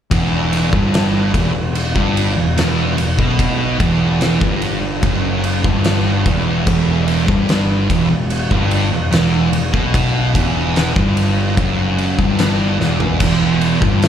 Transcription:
0.11 E1 E2, kick, ride
0.53 ride
0.71 G1 G2, kick
0.94 snare, ride
1.33 E1 E2, kick, ride
1.54 E1 E2
1.75 ride
1.94 G1 G2, kick
2.17 ride
2.36 E1 E2
2.56 E1 E2, snare, ride
2.97 E1 E2, ride
3.17 B1 B2, kick
3.39 kick, ride
3.79 E1 E2, kick, ride
4.21 snare, ride
4.40 G1 G2, kick
4.62 ride
5.02 F#1 F#2, kick, ride
5.44 ride
5.64 G1 G2, kick
5.84 snare, ride
6.26 E1 E2, kick, ride
6.66 E1 E2, kick, crash
7.08 ride
7.27 G1 G2, kick
7.49 snare, ride
7.89 E1 E2, kick, ride
8.10 E1 E2
8.30 ride
8.50 G1 G2, kick
8.71 ride
8.91 E1 E2
9.11 E1 E2, snare, ride
9.51 E1 E2, ride
9.72 B1 B2, kick
9.94 kick, ride
10.33 E1 E2, kick, ride
10.76 snare, ride
10.94 G1 G2, kick
11.17 ride
11.56 F#1 F#2, kick, ride
11.98 ride
12.17 G1 G2, kick
12.39 snare, ride
12.79 E1 E2, snare
13.00 floor tom
13.19 E1 E2, kick, ride, crash
13.61 ride
13.80 G1 G2, kick
14.02 snare, ride

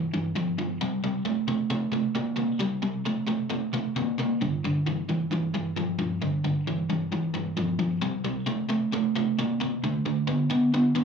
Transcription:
Already playing: G2 E3
0.14 G2 E3
0.35 G2 F3
0.58 G2 F3
0.81 C3 G3
1.04 C3 G3
1.25 C3 A3
1.48 C3 A3
1.70 C3 A3
1.92 C3 A3
2.15 C3 A#3
2.37 C3 A#3
2.60 C3 G3
2.83 C3 G3
3.06 C3 A3
3.27 C3 A3
3.50 C3 A3
3.74 C3 A3
3.96 C3 A#3
4.18 C3 A#3
4.41 G2 D3
4.64 G2 D3
4.87 G2 E3
5.09 G2 E3
5.32 G2 E3
5.54 G2 E3
5.77 G2 F3
5.99 G2 F3
6.22 G2 D3
6.44 G2 D3
6.67 G2 E3
6.90 G2 E3
7.12 G2 E3
7.34 G2 E3
7.57 G2 F3
7.79 G2 F3
8.02 C3 G3
8.24 C3 G3
8.46 C3 A3
8.69 C3 A3
8.92 C3 A3
9.16 C3 A3
9.39 C3 A#3
9.60 C3 A#3
9.84 D3 A3
10.06 D3 A3
10.27 D3 B3
10.50 D3 B3
10.74 D3 B3
10.95 D3 B3

